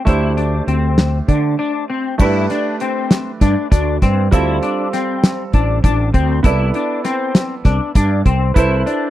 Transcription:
0.05 fretless electric bass D2, grand piano A3 D4 G4 C5, clean electric guitar E4, kick, closed hi-hat
0.37 clean electric guitar D4, closed hi-hat
0.67 fretless electric bass D2, clean electric guitar C4, closed hi-hat
0.98 snare, closed hi-hat
1.28 fretless electric bass D3, clean electric guitar D4, kick, closed hi-hat
1.59 clean electric guitar D4
1.90 clean electric guitar C4
2.18 fretless electric bass G2, grand piano A3 D4 G4 B4, clean electric guitar E4, kick, crash, shaker
2.50 clean electric guitar D4, snare, closed hi-hat
2.80 clean electric guitar C4, closed hi-hat
3.11 snare, closed hi-hat, shaker
3.41 fretless electric bass G2, clean electric guitar D4, kick, snare, closed hi-hat
3.71 fretless electric bass D2, clean electric guitar D4, kick, snare, closed hi-hat, shaker
4.02 fretless electric bass G2, clean electric guitar C4, kick, snare, closed hi-hat
4.31 fretless electric bass D2, grand piano G3 C4 F4 A4, clean electric guitar E4, kick, closed hi-hat, shaker
4.63 clean electric guitar D4, closed hi-hat
4.93 clean electric guitar C4, snare, closed hi-hat
5.24 snare, closed hi-hat, shaker
5.53 fretless electric bass A1, clean electric guitar D4, kick, closed hi-hat
5.84 fretless electric bass A1, clean electric guitar D4, kick, closed hi-hat, shaker
6.14 fretless electric bass D2, clean electric guitar C4, kick, closed hi-hat
6.43 fretless electric bass C2, grand piano B3 E4 A4 D5, clean electric guitar E4, kick, closed hi-hat, shaker
6.74 clean electric guitar D4, closed hi-hat
7.05 clean electric guitar C4, snare, closed hi-hat
7.35 snare, closed hi-hat, shaker
7.65 fretless electric bass C2, clean electric guitar D4, kick, snare, closed hi-hat
7.95 fretless electric bass G2, clean electric guitar D4, kick, snare, closed hi-hat, shaker
8.25 fretless electric bass C2, clean electric guitar C4, kick, closed hi-hat
8.54 fretless electric bass C2, grand piano E4 A4 B4 C5, clean electric guitar E4, kick, closed hi-hat, shaker
8.86 clean electric guitar D4, closed hi-hat, shaker

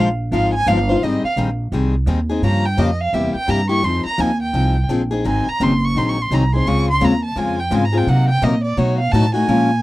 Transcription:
Already playing: upright bass A#1
0.31 upright bass G#1, steel-string acoustic guitar F3 G#3 D#4 F4 C5, violin F5
0.54 violin G#5
0.66 upright bass G1, steel-string acoustic guitar F3 G#3 D#4 F4 C5, violin F5
0.89 steel-string acoustic guitar D#4 F4 C5
1.02 upright bass G#1, steel-string acoustic guitar D#3 G3 C4 D#4 G#4, violin D#5
1.23 violin F5, muted upright bass stroke
1.36 upright bass A#1, steel-string acoustic guitar D#3 G3 C4 D#4 G#4
1.72 upright bass C2, steel-string acoustic guitar D#3 G3 C4 D#4 G#4
2.06 upright bass D#2, steel-string acoustic guitar D#3 G3 C4 D#4 G#4
2.29 steel-string acoustic guitar C4 D#4 G#4
2.42 upright bass G2, steel-string acoustic guitar C#3 F3 A#3 F4 G4, violin A#5
2.65 violin G5
2.77 upright bass F2, steel-string acoustic guitar C#3 F3 A#3 F4 G4, violin D#5
3.01 violin F5
3.13 upright bass E2, steel-string acoustic guitar C3 G3 A#3 E4 G4, violin E5
3.34 violin G5, muted upright bass stroke
3.48 upright bass G2, steel-string acoustic guitar C3 G3 A#3 E4 G4, violin A#5
3.69 steel-string acoustic guitar A#3 E4 G4, violin C#6
3.83 upright bass F2, steel-string acoustic guitar F3 C4 D#4 G#4, violin C6
4.05 violin A#5, muted upright bass stroke
4.18 upright bass D#2, steel-string acoustic guitar F3 C4 D#4 G#4, violin G#5
4.43 violin G5
4.53 upright bass C2, steel-string acoustic guitar F3 C4 D#4 G#4
4.89 upright bass A#1, steel-string acoustic guitar F3 C4 D#4 G#4
5.11 steel-string acoustic guitar C4 D#4 G#4
5.24 upright bass G#1, steel-string acoustic guitar D#3 F#3 C4 D#4 G#4, violin G#5
5.47 violin A#5, muted upright bass stroke
5.60 upright bass F#1, steel-string acoustic guitar D#3 F#3 C4 D#4 G#4, violin C6
5.84 violin C#6
5.95 upright bass A#1, steel-string acoustic guitar D#3 F#3 C4 D#4 G#4, violin C6
6.09 violin C#6
6.22 violin C6
6.31 upright bass C2, steel-string acoustic guitar D#3 F#3 C4 D#4 G#4, violin A#5
6.54 steel-string acoustic guitar C4 D#4 G#4, violin C6
6.66 upright bass C#2, steel-string acoustic guitar C#3 G#3 C4 F4 G#4, violin C#6
6.91 violin C6
7.01 upright bass D#2, steel-string acoustic guitar C#3 G#3 C4 F4 G#4, violin A#5
7.25 violin A5
7.36 upright bass F2, steel-string acoustic guitar C#3 G#3 C4 F4 G#4, violin G#5
7.60 violin G5
7.71 upright bass G#2, steel-string acoustic guitar C#3 G#3 C4 F4 G#4, violin G#5
7.85 violin A#5
7.93 steel-string acoustic guitar C4 F4 G#4
7.97 violin G5
8.07 upright bass C3, steel-string acoustic guitar C3 F#3 A#3 D#4 A#4, violin F#5
8.29 violin G5
8.42 upright bass A#2, steel-string acoustic guitar C3 F#3 A#3 D#4 A#4, violin D#5
8.64 violin D5
8.77 upright bass B2, steel-string acoustic guitar B2 F#3 A3 D#4 F#4, violin C#5
8.99 violin F5
9.12 upright bass A2, steel-string acoustic guitar B2 F#3 A3 D#4 F#4, violin A5
9.34 steel-string acoustic guitar A3 D#4 F#4, violin G#5
9.48 upright bass A#2, steel-string acoustic guitar F3 G#3 C#4 F4 A#4

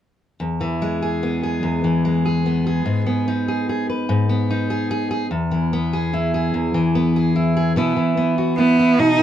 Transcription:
0.40 steel-string acoustic guitar E2
0.61 steel-string acoustic guitar E3
0.82 steel-string acoustic guitar G#3
1.02 steel-string acoustic guitar G#4
1.23 steel-string acoustic guitar B3
1.43 steel-string acoustic guitar G#4
1.63 steel-string acoustic guitar E2
1.84 steel-string acoustic guitar E3
2.05 steel-string acoustic guitar G#3
2.25 steel-string acoustic guitar G#4
2.46 steel-string acoustic guitar B3
2.67 steel-string acoustic guitar G#4
2.86 steel-string acoustic guitar G#2
3.06 steel-string acoustic guitar B3
3.28 steel-string acoustic guitar D#4
3.48 steel-string acoustic guitar G#4
3.69 steel-string acoustic guitar G#4
3.89 steel-string acoustic guitar B4
4.09 steel-string acoustic guitar G#2
4.29 steel-string acoustic guitar B3
4.50 steel-string acoustic guitar D#4
4.70 steel-string acoustic guitar G#4
4.91 steel-string acoustic guitar G#4
5.11 steel-string acoustic guitar G#4
5.31 steel-string acoustic guitar E2
5.51 steel-string acoustic guitar E3
5.73 steel-string acoustic guitar B3
5.93 steel-string acoustic guitar G#4
6.13 steel-string acoustic guitar E4
6.34 steel-string acoustic guitar G#4
6.54 steel-string acoustic guitar E2
6.74 steel-string acoustic guitar E3
6.95 steel-string acoustic guitar B3
7.16 steel-string acoustic guitar G#4
7.36 steel-string acoustic guitar E4
7.57 steel-string acoustic guitar G#4
7.76 steel-string acoustic guitar B2 E3 B3 E4
7.96 steel-string acoustic guitar E3
8.17 steel-string acoustic guitar B3
8.38 steel-string acoustic guitar F#4
8.58 cello B3, steel-string acoustic guitar E4
8.79 steel-string acoustic guitar E4
8.99 steel-string acoustic guitar B2, cello D#4
9.18 steel-string acoustic guitar D#3

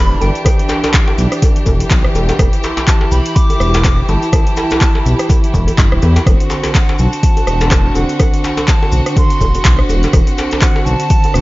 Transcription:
Already playing: detuned saw bass E1, string section E3 D4 G4, flute B5
0.21 detuned saw bass G1, flute G5, djembe tone, maracas
0.35 closed hi-hat, maracas
0.45 kick, cross-stick, closed hi-hat, djembe bass, maracas
0.59 closed hi-hat
0.69 djembe slap, maracas
0.84 closed hi-hat, djembe slap, djembe tone, maracas
0.94 kick, clap, closed hi-hat, maracas
1.08 djembe slap
1.18 detuned saw bass B1, maracas
1.32 cross-stick, closed hi-hat, maracas
1.42 kick, closed hi-hat, djembe tone, maracas
1.56 closed hi-hat
1.66 detuned saw bass E1, kick, djembe tone, djembe bass, maracas
1.80 closed hi-hat, djembe tone, maracas
1.91 detuned saw bass B1, kick, clap, closed hi-hat, maracas
2.04 cross-stick
2.15 detuned saw bass E1, djembe tone, maracas
2.29 closed hi-hat, djembe slap, maracas
2.39 detuned saw bass E1, string section E4, kick, cross-stick, closed hi-hat, djembe bass, maracas
2.53 closed hi-hat
2.63 djembe slap, maracas
2.77 closed hi-hat, djembe slap, djembe tone, maracas
2.88 flute A5, kick, clap, closed hi-hat, maracas
3.01 djembe slap
3.12 detuned saw bass B1, flute B5, maracas
3.25 closed hi-hat, maracas
3.36 flute D6, kick, closed hi-hat, maracas
3.50 closed hi-hat, djembe tone
3.60 detuned saw bass E1, cross-stick, maracas
3.74 closed hi-hat, djembe slap, maracas
3.84 kick, cross-stick, clap, closed hi-hat, djembe tone, maracas
4.09 detuned saw bass G1, flute A5, djembe tone, maracas
4.22 closed hi-hat, maracas
4.33 kick, cross-stick, closed hi-hat, djembe bass, maracas
4.47 closed hi-hat
4.57 djembe slap, maracas
4.70 closed hi-hat, djembe slap, djembe tone, maracas
4.81 kick, clap, closed hi-hat, maracas
4.95 djembe slap
5.06 detuned saw bass B1, maracas
5.19 cross-stick, closed hi-hat, maracas
5.29 kick, closed hi-hat, djembe tone, maracas
5.44 closed hi-hat
5.54 detuned saw bass E1, kick, djembe tone, djembe bass, maracas
5.67 closed hi-hat, djembe tone, maracas
5.78 detuned saw bass G1, kick, clap, closed hi-hat, maracas
5.92 detuned saw bass D1, cross-stick
6.02 detuned saw bass E2, djembe tone, maracas
6.16 closed hi-hat, djembe slap, maracas
6.26 detuned saw bass E1, string section D3 C4 F#4, kick, cross-stick, closed hi-hat, djembe bass, maracas
6.40 closed hi-hat
6.50 djembe slap, maracas
6.63 closed hi-hat, djembe slap, djembe tone, maracas
6.75 flute F#5, kick, clap, closed hi-hat
6.89 djembe slap
6.99 detuned saw bass B1, flute A5, maracas
7.13 closed hi-hat, maracas
7.23 kick, closed hi-hat, maracas
7.37 closed hi-hat, djembe tone
7.47 detuned saw bass E1, cross-stick, maracas
7.61 closed hi-hat, djembe slap, maracas
7.71 kick, cross-stick, clap, closed hi-hat, djembe tone, maracas
7.95 detuned saw bass E1, flute F#5, djembe tone, maracas
8.09 closed hi-hat, maracas
8.20 kick, cross-stick, closed hi-hat, djembe bass, maracas
8.34 closed hi-hat
8.44 djembe slap, maracas
8.57 closed hi-hat, djembe slap, djembe tone, maracas
8.68 flute A5, kick, clap, closed hi-hat, maracas
8.83 djembe slap
8.92 detuned saw bass B1, maracas
9.06 cross-stick, closed hi-hat, maracas
9.16 flute C6, kick, closed hi-hat, djembe tone, maracas
9.30 closed hi-hat
9.41 detuned saw bass E1, kick, djembe tone, djembe bass, maracas
9.55 closed hi-hat, djembe tone, maracas
9.65 detuned saw bass B1, kick, clap, closed hi-hat
9.79 cross-stick
9.89 detuned saw bass E1, djembe tone, maracas
10.03 closed hi-hat, djembe slap, maracas
10.13 detuned saw bass E1, kick, cross-stick, closed hi-hat, djembe bass, maracas
10.27 closed hi-hat
10.38 djembe slap, maracas
10.51 closed hi-hat, djembe slap, djembe tone, maracas
10.61 flute F#5, kick, clap, closed hi-hat
10.76 djembe slap
10.85 detuned saw bass B1, flute A5, maracas
11.00 closed hi-hat, maracas
11.10 kick, closed hi-hat, maracas
11.24 closed hi-hat, djembe tone
11.34 detuned saw bass E1, cross-stick, maracas

